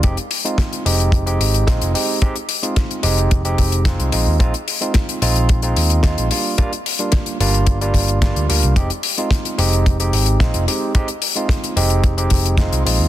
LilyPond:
<<
  \new Staff \with { instrumentName = "Tine electric piano" } { \time 4/4 \key f \dorian \tempo 4 = 110 <aes c' ees' g'>16 r8 <aes c' ees' f'>8. <aes c' ees' g'>8. <aes c' ees' g'>8. <aes c' ees' f'>8 <aes c' ees' g'>8 | <aes c' ees' g'>16 r8 <aes c' ees' f'>8. <aes c' ees' g'>8. <aes c' ees' g'>8. <aes c' ees' f'>8 <aes c' ees' f'>8 | <aes c' ees' f'>16 r8 <aes c' ees' f'>8. <aes c' ees' f'>8. <aes c' ees' f'>8. <aes c' ees' f'>8 <g bes d' f'>8 | <g bes d' f'>16 r8 <g bes d' f'>8. <g bes d' f'>8. <g bes d' f'>8. <g bes d' f'>8 <g bes d' f'>8 |
<aes c' ees' g'>16 r8 <aes c' ees' f'>8. <aes c' ees' g'>8. <aes c' ees' g'>8. <aes c' ees' f'>8 <aes c' ees' g'>8 | <aes c' ees' g'>16 r8 <aes c' ees' f'>8. <aes c' ees' g'>8. <aes c' ees' g'>8. <aes c' ees' f'>8 <aes c' ees' f'>8 | }
  \new Staff \with { instrumentName = "Picked electric bass" } { \clef bass \time 4/4 \key f \dorian f,,16 r4 r16 f,,4 aes,,8 bes,,16 f,,16 r8 | r4. f,,8 f,,8 f,,8. c,16 bes,,16 ees,16 | bes,,16 r4 r16 bes,,4 ees,8 ees,16 bes,,16 r8 | r4. g,,8 g,,8 g,,8. d,16 d,16 c,16 |
f,,16 r4 r16 f,,4 aes,,8 bes,,16 f,,16 r8 | r4. f,,8 f,,8 f,,8. c,16 bes,,16 ees,16 | }
  \new DrumStaff \with { instrumentName = "Drums" } \drummode { \time 4/4 <hh bd>16 hh16 hho16 hh16 <hh bd sn>16 hh16 hho16 hh16 <hh bd>16 hh16 hho16 hh16 <hh bd sn>16 hh16 hho8 | <hh bd>16 hh16 hho16 hh16 <hh bd sn>16 hh16 hho16 hh16 <hh bd>16 hh16 <hho bd>16 hh16 <hh bd sn>16 hh16 hho8 | <hh bd>16 hh16 hho16 hh16 <hh bd sn>16 hh16 hho16 hh16 <hh bd>16 hh16 hho16 hh16 <hh bd sn>16 hh16 hho8 | <hh bd>16 hh16 hho16 hh16 <hh bd sn>16 hh16 hho16 hh16 <hh bd>16 hh16 <hho bd>16 hh16 <hh bd sn>16 hh16 hho16 hh16 |
<hh bd>16 hh16 hho16 hh16 <hh bd sn>16 hh16 hho16 hh16 <hh bd>16 hh16 hho16 hh16 <hh bd sn>16 hh16 hho8 | <hh bd>16 hh16 hho16 hh16 <hh bd sn>16 hh16 hho16 hh16 <hh bd>16 hh16 <hho bd>16 hh16 <hh bd sn>16 hh16 hho8 | }
>>